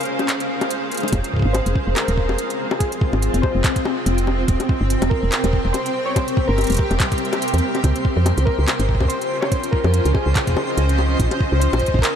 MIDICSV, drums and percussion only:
0, 0, Header, 1, 2, 480
1, 0, Start_track
1, 0, Key_signature, -4, "minor"
1, 0, Tempo, 419580
1, 1288, Time_signature, 4, 2, 24, 8
1, 13905, End_track
2, 0, Start_track
2, 0, Title_t, "Drums"
2, 8, Note_on_c, 9, 42, 39
2, 61, Note_off_c, 9, 42, 0
2, 61, Note_on_c, 9, 42, 28
2, 175, Note_off_c, 9, 42, 0
2, 221, Note_on_c, 9, 42, 37
2, 221, Note_on_c, 9, 60, 53
2, 327, Note_off_c, 9, 42, 0
2, 327, Note_on_c, 9, 39, 110
2, 327, Note_on_c, 9, 42, 74
2, 335, Note_off_c, 9, 60, 0
2, 441, Note_off_c, 9, 39, 0
2, 441, Note_off_c, 9, 42, 0
2, 461, Note_on_c, 9, 42, 54
2, 575, Note_off_c, 9, 42, 0
2, 701, Note_on_c, 9, 42, 37
2, 701, Note_on_c, 9, 60, 83
2, 806, Note_off_c, 9, 42, 0
2, 806, Note_on_c, 9, 42, 78
2, 816, Note_off_c, 9, 60, 0
2, 921, Note_off_c, 9, 42, 0
2, 1047, Note_on_c, 9, 42, 52
2, 1081, Note_off_c, 9, 42, 0
2, 1081, Note_on_c, 9, 42, 43
2, 1114, Note_off_c, 9, 42, 0
2, 1114, Note_on_c, 9, 42, 75
2, 1148, Note_off_c, 9, 42, 0
2, 1148, Note_on_c, 9, 42, 28
2, 1182, Note_on_c, 9, 60, 54
2, 1234, Note_off_c, 9, 42, 0
2, 1234, Note_on_c, 9, 42, 84
2, 1287, Note_off_c, 9, 42, 0
2, 1287, Note_off_c, 9, 60, 0
2, 1287, Note_on_c, 9, 36, 99
2, 1287, Note_on_c, 9, 42, 82
2, 1287, Note_on_c, 9, 60, 54
2, 1402, Note_off_c, 9, 36, 0
2, 1402, Note_off_c, 9, 42, 0
2, 1402, Note_off_c, 9, 60, 0
2, 1422, Note_on_c, 9, 42, 55
2, 1527, Note_on_c, 9, 36, 53
2, 1536, Note_off_c, 9, 42, 0
2, 1561, Note_off_c, 9, 36, 0
2, 1561, Note_on_c, 9, 36, 68
2, 1595, Note_off_c, 9, 36, 0
2, 1595, Note_on_c, 9, 36, 80
2, 1628, Note_off_c, 9, 36, 0
2, 1628, Note_on_c, 9, 36, 97
2, 1743, Note_off_c, 9, 36, 0
2, 1767, Note_on_c, 9, 42, 83
2, 1767, Note_on_c, 9, 60, 83
2, 1882, Note_off_c, 9, 42, 0
2, 1882, Note_off_c, 9, 60, 0
2, 1901, Note_on_c, 9, 42, 55
2, 2008, Note_on_c, 9, 36, 108
2, 2016, Note_off_c, 9, 42, 0
2, 2122, Note_off_c, 9, 36, 0
2, 2247, Note_on_c, 9, 39, 113
2, 2247, Note_on_c, 9, 42, 80
2, 2247, Note_on_c, 9, 60, 51
2, 2362, Note_off_c, 9, 39, 0
2, 2362, Note_off_c, 9, 42, 0
2, 2362, Note_off_c, 9, 60, 0
2, 2382, Note_on_c, 9, 42, 57
2, 2488, Note_on_c, 9, 36, 79
2, 2496, Note_off_c, 9, 42, 0
2, 2602, Note_off_c, 9, 36, 0
2, 2622, Note_on_c, 9, 60, 56
2, 2728, Note_on_c, 9, 42, 83
2, 2736, Note_off_c, 9, 60, 0
2, 2842, Note_off_c, 9, 42, 0
2, 2863, Note_on_c, 9, 42, 57
2, 2977, Note_off_c, 9, 42, 0
2, 3102, Note_on_c, 9, 60, 81
2, 3208, Note_on_c, 9, 36, 106
2, 3208, Note_on_c, 9, 42, 80
2, 3217, Note_off_c, 9, 60, 0
2, 3322, Note_off_c, 9, 36, 0
2, 3322, Note_off_c, 9, 42, 0
2, 3342, Note_on_c, 9, 42, 54
2, 3448, Note_on_c, 9, 36, 124
2, 3457, Note_off_c, 9, 42, 0
2, 3562, Note_off_c, 9, 36, 0
2, 3582, Note_on_c, 9, 60, 54
2, 3688, Note_on_c, 9, 42, 82
2, 3697, Note_off_c, 9, 60, 0
2, 3803, Note_off_c, 9, 42, 0
2, 3823, Note_on_c, 9, 42, 53
2, 3928, Note_on_c, 9, 36, 109
2, 3928, Note_on_c, 9, 60, 54
2, 3937, Note_off_c, 9, 42, 0
2, 4042, Note_off_c, 9, 36, 0
2, 4042, Note_off_c, 9, 60, 0
2, 4168, Note_on_c, 9, 36, 127
2, 4168, Note_on_c, 9, 39, 118
2, 4168, Note_on_c, 9, 42, 79
2, 4282, Note_off_c, 9, 36, 0
2, 4282, Note_off_c, 9, 39, 0
2, 4282, Note_off_c, 9, 42, 0
2, 4302, Note_on_c, 9, 36, 88
2, 4302, Note_on_c, 9, 42, 58
2, 4408, Note_on_c, 9, 60, 81
2, 4417, Note_off_c, 9, 36, 0
2, 4417, Note_off_c, 9, 42, 0
2, 4522, Note_off_c, 9, 60, 0
2, 4648, Note_on_c, 9, 42, 82
2, 4762, Note_off_c, 9, 42, 0
2, 4782, Note_on_c, 9, 42, 54
2, 4888, Note_on_c, 9, 60, 53
2, 4897, Note_off_c, 9, 42, 0
2, 5002, Note_off_c, 9, 60, 0
2, 5128, Note_on_c, 9, 36, 107
2, 5128, Note_on_c, 9, 42, 78
2, 5242, Note_off_c, 9, 36, 0
2, 5242, Note_off_c, 9, 42, 0
2, 5262, Note_on_c, 9, 42, 53
2, 5262, Note_on_c, 9, 60, 50
2, 5368, Note_on_c, 9, 36, 124
2, 5376, Note_off_c, 9, 42, 0
2, 5376, Note_off_c, 9, 60, 0
2, 5482, Note_off_c, 9, 36, 0
2, 5608, Note_on_c, 9, 42, 81
2, 5722, Note_off_c, 9, 42, 0
2, 5742, Note_on_c, 9, 42, 53
2, 5742, Note_on_c, 9, 60, 74
2, 5848, Note_on_c, 9, 36, 112
2, 5857, Note_off_c, 9, 42, 0
2, 5857, Note_off_c, 9, 60, 0
2, 5962, Note_off_c, 9, 36, 0
2, 6088, Note_on_c, 9, 39, 120
2, 6088, Note_on_c, 9, 42, 79
2, 6202, Note_off_c, 9, 39, 0
2, 6202, Note_off_c, 9, 42, 0
2, 6223, Note_on_c, 9, 42, 54
2, 6223, Note_on_c, 9, 60, 52
2, 6328, Note_on_c, 9, 36, 88
2, 6337, Note_off_c, 9, 42, 0
2, 6337, Note_off_c, 9, 60, 0
2, 6442, Note_off_c, 9, 36, 0
2, 6568, Note_on_c, 9, 42, 77
2, 6568, Note_on_c, 9, 60, 50
2, 6682, Note_off_c, 9, 42, 0
2, 6682, Note_off_c, 9, 60, 0
2, 6703, Note_on_c, 9, 42, 54
2, 6817, Note_off_c, 9, 42, 0
2, 7048, Note_on_c, 9, 36, 105
2, 7048, Note_on_c, 9, 42, 77
2, 7048, Note_on_c, 9, 60, 75
2, 7162, Note_off_c, 9, 36, 0
2, 7163, Note_off_c, 9, 42, 0
2, 7163, Note_off_c, 9, 60, 0
2, 7183, Note_on_c, 9, 42, 53
2, 7288, Note_on_c, 9, 36, 121
2, 7297, Note_off_c, 9, 42, 0
2, 7402, Note_off_c, 9, 36, 0
2, 7528, Note_on_c, 9, 42, 34
2, 7528, Note_on_c, 9, 60, 50
2, 7561, Note_off_c, 9, 42, 0
2, 7561, Note_on_c, 9, 42, 41
2, 7595, Note_off_c, 9, 42, 0
2, 7595, Note_on_c, 9, 42, 45
2, 7629, Note_off_c, 9, 42, 0
2, 7629, Note_on_c, 9, 42, 50
2, 7642, Note_off_c, 9, 60, 0
2, 7663, Note_off_c, 9, 42, 0
2, 7663, Note_on_c, 9, 42, 53
2, 7688, Note_off_c, 9, 42, 0
2, 7688, Note_on_c, 9, 42, 58
2, 7715, Note_off_c, 9, 42, 0
2, 7715, Note_on_c, 9, 42, 65
2, 7742, Note_off_c, 9, 42, 0
2, 7742, Note_on_c, 9, 42, 69
2, 7768, Note_on_c, 9, 36, 108
2, 7856, Note_off_c, 9, 42, 0
2, 7883, Note_off_c, 9, 36, 0
2, 7902, Note_on_c, 9, 42, 37
2, 7902, Note_on_c, 9, 60, 50
2, 8008, Note_off_c, 9, 42, 0
2, 8008, Note_on_c, 9, 36, 125
2, 8008, Note_on_c, 9, 39, 117
2, 8008, Note_on_c, 9, 42, 76
2, 8017, Note_off_c, 9, 60, 0
2, 8122, Note_off_c, 9, 36, 0
2, 8123, Note_off_c, 9, 39, 0
2, 8123, Note_off_c, 9, 42, 0
2, 8142, Note_on_c, 9, 36, 87
2, 8142, Note_on_c, 9, 42, 50
2, 8213, Note_off_c, 9, 42, 0
2, 8213, Note_on_c, 9, 42, 41
2, 8257, Note_off_c, 9, 36, 0
2, 8293, Note_off_c, 9, 42, 0
2, 8293, Note_on_c, 9, 42, 33
2, 8382, Note_off_c, 9, 42, 0
2, 8382, Note_on_c, 9, 42, 37
2, 8382, Note_on_c, 9, 60, 78
2, 8488, Note_off_c, 9, 42, 0
2, 8488, Note_on_c, 9, 42, 74
2, 8497, Note_off_c, 9, 60, 0
2, 8555, Note_off_c, 9, 42, 0
2, 8555, Note_on_c, 9, 42, 60
2, 8622, Note_off_c, 9, 42, 0
2, 8622, Note_on_c, 9, 42, 54
2, 8675, Note_off_c, 9, 42, 0
2, 8675, Note_on_c, 9, 42, 41
2, 8789, Note_off_c, 9, 42, 0
2, 8862, Note_on_c, 9, 42, 37
2, 8862, Note_on_c, 9, 60, 51
2, 8968, Note_off_c, 9, 42, 0
2, 8968, Note_off_c, 9, 60, 0
2, 8968, Note_on_c, 9, 36, 101
2, 8968, Note_on_c, 9, 42, 77
2, 8968, Note_on_c, 9, 60, 49
2, 9082, Note_off_c, 9, 36, 0
2, 9082, Note_off_c, 9, 42, 0
2, 9082, Note_off_c, 9, 60, 0
2, 9102, Note_on_c, 9, 42, 51
2, 9208, Note_on_c, 9, 36, 114
2, 9216, Note_off_c, 9, 42, 0
2, 9322, Note_off_c, 9, 36, 0
2, 9448, Note_on_c, 9, 42, 75
2, 9448, Note_on_c, 9, 60, 78
2, 9562, Note_off_c, 9, 42, 0
2, 9562, Note_off_c, 9, 60, 0
2, 9582, Note_on_c, 9, 42, 50
2, 9688, Note_on_c, 9, 36, 108
2, 9697, Note_off_c, 9, 42, 0
2, 9802, Note_off_c, 9, 36, 0
2, 9928, Note_on_c, 9, 39, 114
2, 9928, Note_on_c, 9, 42, 71
2, 9928, Note_on_c, 9, 60, 50
2, 10042, Note_off_c, 9, 39, 0
2, 10042, Note_off_c, 9, 42, 0
2, 10042, Note_off_c, 9, 60, 0
2, 10062, Note_on_c, 9, 42, 51
2, 10168, Note_on_c, 9, 36, 75
2, 10177, Note_off_c, 9, 42, 0
2, 10235, Note_off_c, 9, 36, 0
2, 10235, Note_on_c, 9, 36, 64
2, 10302, Note_off_c, 9, 36, 0
2, 10302, Note_on_c, 9, 36, 57
2, 10302, Note_on_c, 9, 60, 53
2, 10354, Note_off_c, 9, 36, 0
2, 10354, Note_on_c, 9, 36, 44
2, 10407, Note_on_c, 9, 42, 73
2, 10417, Note_off_c, 9, 60, 0
2, 10469, Note_off_c, 9, 36, 0
2, 10522, Note_off_c, 9, 42, 0
2, 10542, Note_on_c, 9, 42, 50
2, 10656, Note_off_c, 9, 42, 0
2, 10782, Note_on_c, 9, 60, 75
2, 10887, Note_on_c, 9, 36, 99
2, 10887, Note_on_c, 9, 42, 75
2, 10896, Note_off_c, 9, 60, 0
2, 11002, Note_off_c, 9, 36, 0
2, 11002, Note_off_c, 9, 42, 0
2, 11022, Note_on_c, 9, 42, 51
2, 11128, Note_on_c, 9, 36, 114
2, 11136, Note_off_c, 9, 42, 0
2, 11242, Note_off_c, 9, 36, 0
2, 11262, Note_on_c, 9, 60, 54
2, 11368, Note_on_c, 9, 42, 75
2, 11376, Note_off_c, 9, 60, 0
2, 11482, Note_off_c, 9, 42, 0
2, 11502, Note_on_c, 9, 42, 50
2, 11607, Note_on_c, 9, 36, 102
2, 11608, Note_on_c, 9, 60, 52
2, 11617, Note_off_c, 9, 42, 0
2, 11722, Note_off_c, 9, 36, 0
2, 11722, Note_off_c, 9, 60, 0
2, 11847, Note_on_c, 9, 36, 115
2, 11848, Note_on_c, 9, 39, 116
2, 11848, Note_on_c, 9, 42, 74
2, 11962, Note_off_c, 9, 36, 0
2, 11962, Note_off_c, 9, 39, 0
2, 11962, Note_off_c, 9, 42, 0
2, 11982, Note_on_c, 9, 36, 76
2, 11982, Note_on_c, 9, 42, 51
2, 12008, Note_off_c, 9, 36, 0
2, 12008, Note_on_c, 9, 36, 64
2, 12035, Note_off_c, 9, 36, 0
2, 12035, Note_on_c, 9, 36, 53
2, 12061, Note_off_c, 9, 36, 0
2, 12061, Note_on_c, 9, 36, 42
2, 12087, Note_on_c, 9, 60, 76
2, 12096, Note_off_c, 9, 42, 0
2, 12175, Note_off_c, 9, 36, 0
2, 12201, Note_off_c, 9, 60, 0
2, 12327, Note_on_c, 9, 42, 73
2, 12442, Note_off_c, 9, 42, 0
2, 12462, Note_on_c, 9, 42, 50
2, 12568, Note_on_c, 9, 60, 52
2, 12576, Note_off_c, 9, 42, 0
2, 12682, Note_off_c, 9, 60, 0
2, 12807, Note_on_c, 9, 36, 98
2, 12808, Note_on_c, 9, 42, 76
2, 12922, Note_off_c, 9, 36, 0
2, 12922, Note_off_c, 9, 42, 0
2, 12943, Note_on_c, 9, 42, 51
2, 12943, Note_on_c, 9, 60, 56
2, 13047, Note_on_c, 9, 36, 111
2, 13057, Note_off_c, 9, 42, 0
2, 13057, Note_off_c, 9, 60, 0
2, 13162, Note_off_c, 9, 36, 0
2, 13288, Note_on_c, 9, 42, 77
2, 13402, Note_off_c, 9, 42, 0
2, 13422, Note_on_c, 9, 42, 23
2, 13422, Note_on_c, 9, 60, 81
2, 13492, Note_off_c, 9, 42, 0
2, 13492, Note_on_c, 9, 42, 32
2, 13527, Note_on_c, 9, 36, 47
2, 13537, Note_off_c, 9, 60, 0
2, 13572, Note_off_c, 9, 42, 0
2, 13572, Note_on_c, 9, 42, 41
2, 13595, Note_off_c, 9, 36, 0
2, 13595, Note_on_c, 9, 36, 58
2, 13662, Note_off_c, 9, 36, 0
2, 13662, Note_on_c, 9, 36, 69
2, 13687, Note_off_c, 9, 42, 0
2, 13715, Note_off_c, 9, 36, 0
2, 13715, Note_on_c, 9, 36, 83
2, 13768, Note_on_c, 9, 39, 109
2, 13768, Note_on_c, 9, 42, 74
2, 13829, Note_off_c, 9, 36, 0
2, 13882, Note_off_c, 9, 39, 0
2, 13882, Note_off_c, 9, 42, 0
2, 13905, End_track
0, 0, End_of_file